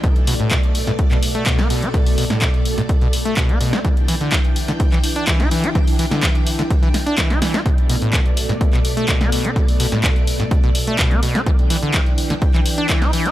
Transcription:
<<
  \new Staff \with { instrumentName = "String machine" } { \time 4/4 \key b \minor \tempo 4 = 126 <b, a d''>1~ | <b, a d''>1 | <e d' g''>1~ | <e d' g''>1 |
<b, a d''>1~ | <b, a d''>1 | <e d' g''>1 | }
  \new Staff \with { instrumentName = "Acid bass" } { \clef bass \time 4/4 \key b \minor b,16 r16 b,16 a,16 b,16 r8 a,16 r16 b,16 r16 a16 b,16 b16 b,16 d'16 | b,16 r16 b,16 a,16 b,16 r8 a,16 r16 b,16 r16 a16 b,16 b16 b,16 d'16 | e16 r16 e16 d16 e16 r8 d16 r16 e16 r16 d'16 e16 e'16 e16 g'16 | e16 r16 e16 d16 e16 r8 d16 r16 e16 r16 d'16 e16 e'16 e16 g'16 |
b,16 r16 b,16 a,16 b,16 r8 a,16 r16 b,16 r16 a16 b,16 b16 b,16 d'16 | b,16 r16 b,16 a,16 b,16 r8 a,16 r16 b,16 r16 a16 b,16 b16 b,16 d'16 | e16 r16 e16 d16 e16 r8 d16 r16 e16 r16 d'16 e16 e'16 e16 g'16 | }
  \new DrumStaff \with { instrumentName = "Drums" } \drummode { \time 4/4 <hh bd>16 hh16 hho8 <hc hh bd>16 hh16 hho16 <hh sn>16 <hh bd>16 <hc hh>16 hho16 hh16 <hc hh bd>16 <hh sn>16 hho16 hh16 | <hh bd>16 hho16 hho16 sn16 <hc hh bd>16 hh16 hho16 <hh sn>16 <hh bd>16 hh16 hho16 hh16 <hc hh bd>16 hh16 hho16 <hh sn>16 | <hh bd>16 hh16 hho16 hh16 <hc hh bd>16 hh16 hho16 <hh sn>16 <hh bd>16 <hc hh>16 hho16 hh16 <hc hh bd>16 <hh sn>16 hho16 hh16 | <hh bd>16 hho16 hho16 <hh sn>16 <hc hh bd>16 hh16 hho16 <hh sn>16 <hh bd>16 hh16 <hho sn>16 hh16 <hc hh bd sn>16 <hh sn>16 <hho sn>16 <hh sn>16 |
<hh bd>16 hh16 hho16 hh16 <hc hh bd>16 hh16 hho16 <hh sn>16 <hh bd>16 <hc hh>16 hho16 hh16 <hc hh bd>16 <hh sn>16 hho16 hh16 | <hh bd>16 hho16 hho16 <hh sn>16 <hc hh bd>16 hh16 hho16 <hh sn>16 <hh bd>16 hh16 hho16 hh16 <hc hh bd>16 hh16 hho16 <hh sn>16 | <hh bd>16 hh16 hho16 hh16 <hc hh bd>16 hh16 hho16 <hh sn>16 <hh bd>16 <hc hh>16 hho16 hh16 <hc hh bd>16 <hh sn>16 hho16 hh16 | }
>>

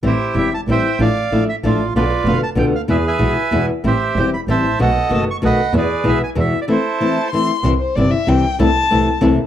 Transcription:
<<
  \new Staff \with { instrumentName = "Violin" } { \time 3/4 \key a \minor \tempo 4 = 190 r2. | r2. | r2. | r2. |
r2. | r2. | r2. | r4 a''4 c'''4 |
\key c \major r8 c''8 d''8 e''8 g''4 | a''2 r4 | }
  \new Staff \with { instrumentName = "Bandoneon" } { \time 3/4 \key a \minor << { c''4 e''8 a''8 g''4 | f''4. e''8 d''8. r16 | d''4 f''8 a''8 g''8 f''8 | e''8 gis''2 r8 |
e''4 g''8 b''8 a''4 | fis''4 a''8 cis'''8 b''4 | d''4 e''8 gis''8 \tuplet 3/2 { e''4 d''8 } | c''2 r4 |
\key c \major r2. | r2. | } \\ { <e' g'>4. r8 <c'' e''>4 | d''4. r8 f'4 | <f' b'>4. r4. | <gis' b'>8 <b' e''>2 r8 |
<g' c''>4. r8 <c'' e''>4 | <a' dis''>4. r8 <dis'' fis''>4 | <gis' b'>4. r4. | <e' a'>2 r4 |
r2. | r2. | } >> }
  \new Staff \with { instrumentName = "Nylon-string guitar" } { \time 3/4 \key a \minor <e g c' e'>8 r8 <e g c' e'>8 r8 <e g c' e'>8 r8 | <f a d' e'>8 r8 <f a d' e'>8 r8 <f a d' e'>8 r8 | <b, d b d' f'>8 r8 <b, d b d' f'>8 r8 <b, d b d' f'>8 r8 | <b, e gis b e'>8 r8 <b, e gis b e'>8 r8 <b, e gis b e'>8 r8 |
<e g c' e'>8 r8 <e g c' e'>8 r8 <e g c' e'>8 r8 | <b, dis a b fis'>8 r8 <b, dis a b fis'>8 r8 <b, dis a b fis'>8 r8 | <b, e gis b e'>8 r8 <b, e gis b e'>8 r8 <b, e gis b e'>8 r8 | <e a c' e'>8 r8 <e a c' e'>8 r8 <e a c' e'>8 r8 |
\key c \major <c e g c' e'>8 r8 <c e g c' e'>8 r8 <c e g c' e'>8 r8 | <c e a c' e'>8 r8 <c e a c' e'>8 r8 <c e a c' e'>8 r8 | }
  \new Staff \with { instrumentName = "Double bass" } { \clef bass \time 3/4 \key a \minor a,,8 r8 e,,8 r8 a,,8 r8 | a,,8 r8 a,,8 r8 a,,8 a,,8 | b,,8 r8 f,,8 r8 b,,8 d,8 | e,8 r8 b,,8 r8 e,8 r8 |
a,,8 r8 e,,8 r8 a,,8 a,,8 | b,,8 r8 fis,,8 r8 b,,8 r8 | e,8 r8 b,,8 r8 e,8 r8 | r2. |
\key c \major c,8 r8 g,,8 r8 c,8 r8 | c,8 r8 c,8 r8 c,8 ees,8 | }
>>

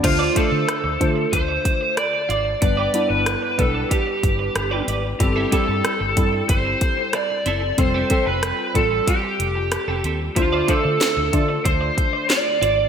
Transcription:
<<
  \new Staff \with { instrumentName = "Lead electric guitar" } { \time 4/4 \key d \dorian \tempo 4 = 93 f'8 a'4. c''4 d''4 | d''8. b'8. a'8 g'4. r8 | g'8 a'4. c''4 d''4 | c''8. b'8. a'8 g'4. r8 |
f'8 a'4. c''4 d''4 | }
  \new Staff \with { instrumentName = "Clean electric guitar" } { \time 4/4 \key d \dorian r16 <f' c'' d''>16 <f' c'' d''>16 r2 r8. <f' c'' d''>16 r16 | r16 <g' b' d''>16 <g' b' d''>16 r2 r8 <g' b' d''>16 <g' b' d''>16 r16 | r16 <c' e' a'>16 <c' e' a'>16 r2 r8. <c' e' a'>16 r16 | r16 <c' g' a'>16 <c' g' a'>16 r2 r8 <c' g' a'>16 <c' g' a'>16 r16 |
r16 <f' c'' d''>16 <f' c'' d''>16 r2 r8. <f' c'' d''>16 r16 | }
  \new Staff \with { instrumentName = "Synth keys" } { \time 4/4 \key d \dorian << { <a d' f' c''>8 <a d' f' c''>8 r8 <a d' f' c''>4. r4 | <g b d' b'>8 <g b d' e'>8 r8 <g b d' b'>4. r4 | <g c' e' a'>8 <g c' e' g'>8 r8 <g c' e' a'>4. r4 | <g c' f' a'>8 <g c' f' a'>8 r8 <g c' f' a'>4. r4 |
<a d' f' c''>8 <a d' f' c''>8 r8 <a d' f' d''>4. r4 | } \\ { d4. r2 r8 | g,4. r2 r8 | g,4. r2 r8 | r1 |
d4. r2 r8 | } >> }
  \new Staff \with { instrumentName = "Fingered electric bass" } { \clef bass \time 4/4 \key d \dorian d,8 r16 d16 r16 d,16 d8 d,8 r4 gis,,8 | g,,8 r16 g,,8 r16 b,,8 r8 g,,8 g,,8 gis,,8 | g,,8 r16 g,16 r16 g,,16 g,8 g,,8 r4 fis,,8 | f,,8 r16 f,,8 r16 a,,8 r8 f,,8. f,,16 ees,8 |
d,8 r16 d16 r16 d,16 d8 d,8 r4 gis,,8 | }
  \new DrumStaff \with { instrumentName = "Drums" } \drummode { \time 4/4 <cymc hh bd>8 <hh bd>8 <hh ss>8 <hh bd>8 <hh bd>8 <hh bd>8 <hh ss>8 hh8 | <hh bd>8 hh8 <hh ss>8 <hh bd>8 <hh bd>8 <hh bd>8 <hh ss>8 hh8 | <hh bd>8 <hh bd>8 <hh ss>8 <hh bd>8 <hh bd>8 <hh bd>8 <hh ss>8 hh8 | <hh bd>8 <hh bd>8 <hh ss>8 <hh bd>8 <hh bd>8 hh8 <hh ss>8 hh8 |
<hh bd>8 <hh bd>8 <hh sn>8 <hh bd>8 <hh bd>8 <hh bd>8 <hh sn>8 hh8 | }
>>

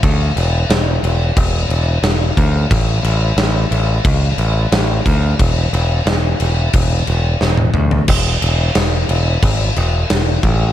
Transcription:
<<
  \new Staff \with { instrumentName = "Picked electric bass" } { \clef bass \time 4/4 \key e \mixolydian \tempo 4 = 89 d,8 e,,8 e,,8 e,,8 e,,8 e,,8 e,,8 d,8 | a,,8 a,,8 a,,8 a,,8 cis,8 a,,8 a,,8 d,8 | e,,8 e,,8 e,,8 e,,8 e,,8 e,,8 e,,8 d,8 | e,,8 e,,8 e,,8 e,,8 gis,,8 e,,8 e,,8 a,,8 | }
  \new DrumStaff \with { instrumentName = "Drums" } \drummode { \time 4/4 <cymc bd>8 cymc8 <cymc sn>8 cymc8 <cymc bd>8 cymc8 <cymc sn>8 <cymc bd>8 | <cymc bd>8 cymc8 <cymc sn>8 cymc8 <cymc bd>8 cymc8 <cymc sn>8 <cymc bd>8 | <cymc bd>8 cymc8 <cymc sn>8 cymc8 <cymc bd>8 cymc8 sn16 tommh16 toml16 tomfh16 | <cymc bd>8 cymc8 <cymc sn>8 cymc8 <cymc bd>8 cymc8 <cymc sn>8 <cymc bd>8 | }
>>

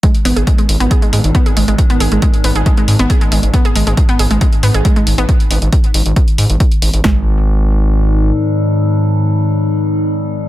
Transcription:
<<
  \new Staff \with { instrumentName = "Synth arpeggio sound" } { \clef bass \time 4/4 \key gis \minor \tempo 4 = 137 gis16 r16 b16 gis'16 gis16 gis16 r16 b16 gis'16 gis16 gis16 r16 b16 gis'16 gis16 gis16 | r16 b16 gis'16 gis16 gis16 r16 b16 gis'16 gis16 gis16 r16 b16 gis'16 gis16 gis16 r16 | b16 gis'16 gis16 gis16 r16 b16 gis'16 gis16 gis16 r16 b16 gis'16 gis16 gis16 r16 b16 | r1 |
gis8 r2. r8 | r1 | }
  \new Staff \with { instrumentName = "Synth drone" } { \clef bass \time 4/4 \key gis \minor <gis, dis>1~ | <gis, dis>1~ | <gis, dis>1 | r1 |
<gis, dis>1~ | <gis, dis>1 | }
  \new Staff \with { instrumentName = "Analog synth bass" } { \clef bass \time 4/4 \key gis \minor r8 gis,,16 gis,,16 r8 gis,,16 gis,,16 r8 gis,16 gis,,16 r8 gis,,16 gis,,16 | r8 gis,,16 gis,,16 r8 gis,,16 gis,,16 r8 gis,16 gis,,16 r8 gis,,16 gis,,16 | r8 gis,,16 gis,,16 r8 gis,,16 gis,,16 r8 gis,16 gis,,16 r8 gis,,16 gis,,16 | r8 gis,,16 gis,,16 r8 gis,,16 gis,,16 r8 gis,16 gis,,16 r8 gis,,16 gis,,16 |
gis,,2. r4 | r1 | }
  \new DrumStaff \with { instrumentName = "Drums" } \drummode { \time 4/4 <hh bd>16 hh16 hho16 hh16 <hh bd>16 hh16 hho16 hh16 <hh bd>16 hh16 hho16 hh16 <hh bd>16 hh16 hho16 hh16 | <hh bd>16 hh16 hho16 hh16 <hh bd>16 hh16 hho16 hh16 <hh bd>16 hh16 hho16 hh16 <hh bd>16 hh16 hho16 hh16 | <hh bd>16 hh16 hho16 hh16 <hh bd>16 hh16 hho16 hh16 <hh bd>16 hh16 hho16 hh16 <hh bd>16 hh16 hho16 hh16 | <hh bd>16 hh16 hho16 hh16 <hh bd>16 hh16 hho16 hh16 <hh bd>16 hh16 hho16 hh16 <hh bd>16 hh16 hho16 hh16 |
<bd sn>4 r4 r4 r4 | r4 r4 r4 r4 | }
>>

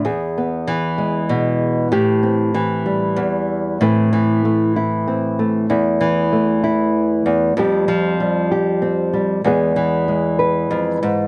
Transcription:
\new Staff \with { instrumentName = "Nylon-string guitar" } { \clef bass \time 3/4 \key a \minor \tempo 4 = 96 << { gis'8 b4 gis4. | g'8 c'4 g4. | <e a c' e'>4 a8 e'8 c'8 a8 | e'4 a8 e'4. |
<f g c' g'>4 g8 g'8 c'8 g8 | <e gis b gis'>4 gis8 b'4. | } \\ { e,4 e4 b,4 | a,4 e4 e,4 | a,8 e2~ e8 | e,8 e2 e,8 |
f,8 f2~ f8 | e,8 e4. f,8 gis,8 | } >> }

